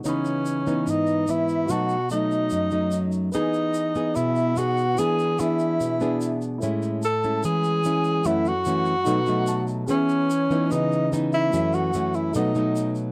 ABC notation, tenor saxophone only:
X:1
M:4/4
L:1/8
Q:1/4=146
K:E
V:1 name="Tenor saxophone"
C4 D2 E2 | F2 D4- D z | D4 E2 F2 | G2 E4- E z |
z2 A2 G4 | E F6 z | C4 D2 z E- | E F2 E D3 z |]